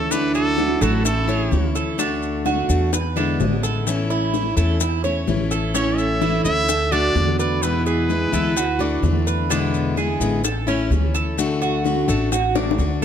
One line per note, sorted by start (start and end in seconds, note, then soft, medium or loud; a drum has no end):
0.00 0.75 D2 medium
0.00 0.10 A3 medium
0.00 0.10 C#4 medium
0.00 0.11 E4 medium
0.00 0.13 A4 loud
0.00 0.33 A4 medium
0.10 0.57 D3 medium
0.10 0.56 F#3 medium
0.10 0.57 A3 medium
0.10 0.34 D4 medium
0.10 0.57 D4 medium
0.10 0.58 E4 medium
0.10 0.34 B4 medium
0.10 high bongo medium
0.10 maracas medium
0.35 0.78 D4 medium
0.35 0.80 F#4 medium
0.35 0.84 A4 loud
0.35 maracas soft
0.57 0.80 F#3 medium
0.57 0.81 A3 medium
0.57 0.81 D4 medium
0.57 0.80 E4 medium
0.57 high bongo medium
0.57 maracas soft
0.81 1.48 A1 medium
0.81 1.04 F#3 medium
0.81 1.05 A3 medium
0.81 1.04 A3 medium
0.81 1.04 D4 medium
0.81 1.04 E4 medium
0.81 1.05 F#4 medium
0.81 1.04 A4 medium
0.81 high bongo soft
0.81 maracas medium
1.04 1.72 C#4 medium
1.04 1.28 E4 medium
1.04 1.72 A4 medium
1.04 muted steel-string acoustic guitar stroke medium
1.04 high bongo medium
1.04 maracas medium
1.28 1.51 A3 medium
1.28 1.51 C#4 medium
1.28 1.51 E4 medium
1.28 1.74 C#5 medium
1.28 high bongo soft
1.28 maracas soft
1.51 2.63 D2 medium
1.51 1.98 E3 medium
1.51 1.97 A3 medium
1.51 1.98 C#4 medium
1.51 1.99 E4 medium
1.51 high bongo soft
1.51 low bongo medium
1.51 maracas soft
1.75 1.98 A4 medium
1.75 high bongo soft
1.75 maracas medium
1.98 2.44 D3 medium
1.98 2.45 A3 medium
1.98 2.45 D4 medium
1.98 2.45 F#4 medium
1.98 high bongo medium
1.98 maracas medium
2.23 maracas soft
2.45 2.68 D3 soft
2.45 2.68 A3 medium
2.45 2.69 D4 soft
2.45 2.91 F#4 medium
2.45 2.68 F#4 medium
2.45 high bongo medium
2.45 maracas soft
2.69 3.36 E2 medium
2.69 2.92 A3 medium
2.69 2.92 D4 medium
2.69 2.92 F#4 medium
2.69 high bongo soft
2.69 maracas medium
2.92 3.16 B4 medium
2.92 muted steel-string acoustic guitar stroke medium
2.92 high bongo medium
2.92 maracas medium
3.16 3.39 D3 medium
3.16 3.39 G#3 medium
3.16 3.39 B3 medium
3.16 3.62 D4 medium
3.16 3.39 E4 medium
3.16 high bongo soft
3.16 maracas soft
3.39 4.51 A1 medium
3.39 3.86 G#3 medium
3.39 3.86 B3 medium
3.39 3.87 E4 medium
3.39 high bongo soft
3.39 low bongo medium
3.39 maracas soft
3.63 4.09 A4 medium
3.63 high bongo soft
3.63 maracas medium
3.87 4.32 E3 medium
3.87 4.33 A3 medium
3.87 4.33 C#4 medium
3.87 4.34 E4 medium
3.87 high bongo medium
3.87 maracas medium
4.10 4.56 E4 medium
4.10 maracas soft
4.34 4.56 E3 soft
4.34 4.57 A3 medium
4.34 4.57 C#4 medium
4.34 4.55 E4 medium
4.34 high bongo medium
4.34 maracas soft
4.57 5.23 E2 medium
4.57 4.80 A3 soft
4.57 4.80 C#4 medium
4.57 4.80 E4 medium
4.57 4.80 A4 medium
4.57 high bongo soft
4.57 maracas medium
4.80 5.03 E4 medium
4.80 muted steel-string acoustic guitar stroke medium
4.80 high bongo medium
4.80 maracas medium
5.04 5.27 A3 medium
5.04 5.27 C#4 medium
5.04 5.27 E4 medium
5.04 5.50 C#5 medium
5.04 high bongo soft
5.04 maracas soft
5.27 6.39 A1 medium
5.27 5.73 E3 medium
5.27 5.74 A3 medium
5.27 5.74 C#4 medium
5.27 5.74 E4 medium
5.27 high bongo soft
5.27 low bongo medium
5.27 maracas soft
5.51 5.74 A4 medium
5.51 high bongo soft
5.51 maracas medium
5.74 6.20 E3 medium
5.74 6.21 A3 medium
5.74 6.20 C#4 medium
5.74 6.21 C#4 medium
5.74 5.97 E4 medium
5.74 6.21 E4 medium
5.74 5.99 C#5 medium
5.74 high bongo medium
5.74 maracas medium
5.98 6.44 A4 medium
5.98 6.44 E5 loud
5.98 maracas soft
6.21 6.44 E3 medium
6.21 6.44 A3 soft
6.21 6.44 C#4 medium
6.21 6.67 E4 medium
6.21 6.43 E4 medium
6.21 high bongo medium
6.21 maracas soft
6.44 7.11 D2 medium
6.44 6.67 A3 medium
6.44 6.68 C#4 medium
6.44 6.67 E4 medium
6.44 6.89 A4 medium
6.44 6.94 E5 loud
6.44 high bongo soft
6.44 maracas medium
6.68 6.91 A4 medium
6.68 muted steel-string acoustic guitar stroke medium
6.68 high bongo medium
6.68 maracas medium
6.92 7.15 A3 medium
6.92 7.38 D4 medium
6.92 7.15 D4 medium
6.92 7.14 F#4 medium
6.92 7.39 F#4 medium
6.92 7.39 D5 loud
6.92 high bongo soft
6.92 maracas soft
7.15 8.26 E2 medium
7.15 7.61 D3 medium
7.15 7.62 A3 medium
7.15 high bongo soft
7.15 low bongo medium
7.15 maracas soft
7.39 7.61 F#4 medium
7.39 7.85 B4 medium
7.39 7.64 D5 medium
7.39 high bongo soft
7.39 maracas medium
7.62 8.08 B2 medium
7.62 8.08 E3 medium
7.62 8.08 G#3 medium
7.62 8.09 B3 medium
7.62 7.86 E4 medium
7.62 8.09 E4 medium
7.62 7.86 B4 medium
7.62 high bongo medium
7.62 maracas medium
7.86 9.23 E4 medium
7.86 8.32 G#4 medium
7.86 9.23 B4 medium
7.86 maracas soft
8.09 8.32 E3 medium
8.09 8.32 G#3 medium
8.09 8.32 B3 medium
8.09 8.31 E4 medium
8.09 high bongo medium
8.09 maracas soft
8.32 8.99 D2 medium
8.32 8.56 E3 medium
8.32 8.56 G#3 medium
8.32 8.56 B3 medium
8.32 8.55 E4 medium
8.32 8.56 A4 medium
8.32 high bongo soft
8.32 maracas medium
8.56 8.79 F#4 medium
8.56 muted steel-string acoustic guitar stroke medium
8.56 high bongo medium
8.56 maracas medium
8.79 9.02 A3 medium
8.79 9.03 D4 medium
8.79 9.02 F#4 medium
8.79 9.26 D5 medium
8.79 high bongo soft
8.79 maracas soft
9.03 10.14 E2 medium
9.03 9.49 D3 soft
9.03 9.49 A3 medium
9.03 9.50 D4 medium
9.03 9.50 F#4 medium
9.03 high bongo soft
9.03 low bongo medium
9.03 maracas soft
9.27 9.50 B4 medium
9.27 high bongo soft
9.27 maracas medium
9.50 9.96 B2 medium
9.50 9.95 D3 medium
9.50 9.96 G#3 medium
9.50 9.96 B3 medium
9.50 9.96 D4 medium
9.50 9.97 E4 medium
9.50 high bongo medium
9.50 maracas medium
9.74 maracas soft
9.96 10.19 D3 soft
9.96 10.20 G#3 soft
9.96 10.20 B3 medium
9.96 10.19 E4 medium
9.96 10.43 G#4 medium
9.96 high bongo medium
9.96 maracas soft
10.20 10.87 A1 medium
10.20 10.43 D3 medium
10.20 10.44 G#3 medium
10.20 10.43 B3 medium
10.20 10.43 E4 medium
10.20 high bongo soft
10.20 maracas medium
10.44 10.67 A4 medium
10.44 muted steel-string acoustic guitar stroke medium
10.44 high bongo medium
10.44 maracas medium
10.67 10.90 A3 medium
10.67 11.13 C#4 medium
10.67 10.90 C#4 medium
10.67 10.90 E4 medium
10.67 high bongo soft
10.67 maracas soft
10.90 12.02 D2 medium
10.90 11.37 E3 medium
10.90 11.37 A3 medium
10.90 11.38 C#4 medium
10.90 high bongo soft
10.90 low bongo medium
10.90 maracas soft
11.14 11.60 A4 medium
11.14 high bongo soft
11.14 maracas medium
11.38 11.83 D3 medium
11.38 11.84 A3 medium
11.38 11.85 D4 medium
11.38 11.85 F#4 medium
11.38 high bongo medium
11.38 maracas medium
11.62 12.07 F#4 medium
11.62 maracas soft
11.84 12.07 D3 soft
11.84 12.08 A3 soft
11.84 12.08 D4 medium
11.84 12.07 F#4 medium
11.84 high bongo medium
11.84 maracas soft
12.08 12.75 A1 medium
12.08 12.31 A3 medium
12.08 12.31 D4 medium
12.08 12.31 F#4 medium
12.08 12.31 A4 medium
12.08 high bongo soft
12.08 maracas medium
12.32 12.55 F#4 medium
12.32 muted steel-string acoustic guitar stroke medium
12.32 high bongo medium
12.32 maracas medium
12.55 12.78 A3 medium
12.55 12.78 D4 medium
12.55 12.78 F#4 medium
12.55 13.01 D5 medium
12.55 high bongo loud
12.55 maracas soft
12.71 high bongo loud
12.78 13.05 D2 medium
12.78 13.05 D3 soft
12.78 13.05 A3 medium
12.78 13.05 D4 medium
12.78 13.05 F#4 medium
12.78 maracas soft